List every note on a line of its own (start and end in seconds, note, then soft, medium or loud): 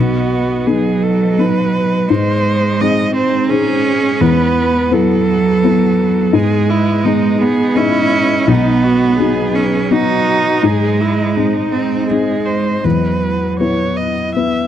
0.00 0.65 B1 soft
0.00 0.68 B3 medium
0.00 2.04 B3 medium
0.00 0.68 F#4 soft
0.00 2.03 B4 soft
0.00 2.04 D#5 medium
0.66 2.08 F#3 medium
0.66 1.34 B3 soft
0.66 1.34 D#4 soft
0.66 1.05 G#4 medium
1.03 1.40 A4 medium
1.38 2.05 B3 soft
1.38 2.05 D#4 soft
1.38 2.10 B4 medium
2.08 2.78 G#2 medium
2.08 3.12 G#3 medium
2.08 4.20 G#3 medium
2.08 4.16 D#4 medium
2.08 4.20 C5 medium
2.08 2.82 C5 medium
2.81 3.47 C4 soft
2.81 3.47 D#4 soft
2.81 3.47 G#4 soft
2.81 3.15 D#5 medium
3.13 3.51 C4 medium
3.13 3.50 C5 medium
3.50 4.22 C#4 medium
3.50 4.17 D#4 soft
3.50 4.23 G#4 medium
3.50 4.17 G#4 soft
3.50 4.17 C5 soft
4.20 4.89 E2 medium
4.20 6.34 B3 medium
4.20 4.91 B3 medium
4.20 6.34 E4 medium
4.20 8.48 B4 medium
4.20 4.94 B4 medium
4.91 6.31 F#3 medium
4.91 5.59 B3 soft
4.91 5.59 E4 soft
4.91 6.36 A4 medium
4.91 5.59 B4 medium
5.64 6.30 B3 soft
5.64 6.31 E4 soft
5.64 6.31 B4 medium
6.33 7.02 G#2 medium
6.33 7.42 G#3 medium
6.33 8.49 G#3 medium
6.33 6.71 G#4 medium
6.33 10.62 D#5 medium
6.70 7.06 E4 medium
7.05 7.73 B3 soft
7.05 7.73 D#4 soft
7.05 7.41 D#4 medium
7.05 7.73 G#4 medium
7.41 7.78 B3 medium
7.41 7.79 G#4 medium
7.76 8.44 B3 soft
7.76 8.50 C#4 loud
7.76 8.44 D#4 soft
7.76 8.50 E4 medium
7.76 8.44 G#4 soft
8.47 9.17 B1 medium
8.47 10.65 F#3 medium
8.47 9.57 B3 medium
8.47 8.85 D#4 medium
8.47 10.61 B4 medium
8.83 9.19 F#4 medium
9.19 9.87 B3 soft
9.19 9.87 D#4 soft
9.19 9.87 F#4 medium
9.19 9.93 G#4 medium
9.55 9.94 C#4 medium
9.91 10.60 B3 soft
9.91 10.60 D#4 soft
9.91 10.64 D#4 medium
9.91 10.60 F#4 soft
9.91 10.66 F#4 medium
10.62 11.34 G#2 medium
10.62 11.71 G#3 medium
10.62 12.85 G#3 medium
10.62 11.02 G#4 medium
10.62 12.84 C5 medium
10.62 12.80 D#5 medium
11.00 11.37 E4 medium
11.36 12.06 C4 soft
11.36 12.08 D#4 soft
11.36 12.06 D#4 soft
11.36 12.06 G#4 soft
11.72 12.12 C4 medium
12.08 12.84 G#3 medium
12.08 12.81 C4 soft
12.08 12.80 D#4 soft
12.08 12.46 G#4 soft
12.08 12.81 G#4 soft
12.45 12.85 C5 soft
12.83 13.58 E2 soft
12.83 14.35 F#3 medium
12.83 14.67 B3 medium
12.83 14.67 E4 medium
12.83 14.67 B4 medium
12.83 13.52 B4 soft
13.60 14.31 B3 soft
13.60 14.31 E4 soft
13.60 14.32 B4 soft
13.60 13.98 C#5 soft
13.96 14.34 D#5 soft
14.35 14.67 B3 soft
14.35 14.67 E4 soft
14.35 14.67 B4 soft
14.35 14.67 E5 medium